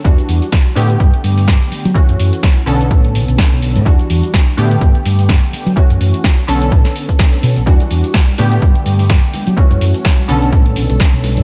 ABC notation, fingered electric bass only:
X:1
M:4/4
L:1/16
Q:"Swing 16ths" 1/4=126
K:Bm
V:1 name="Fingered electric bass" clef=bass
E,, z E,, z3 A,,2 G,, z G,,3 z2 F, | z F,, F,, z3 B,,,2 A,,2 B,,, B,,, z B,,,2 A,, | E,, z E,, z3 A,,2 G,, z G,,3 z2 F, | z F,, F,, z3 B,,,2 A,, z4 z B,, B,,, |
E,, z E,, z3 A,,2 G,, z G,,3 z2 F, | z F,, F,, z3 B,,,2 A,,2 B,,, B,,, z B,,,2 A,, |]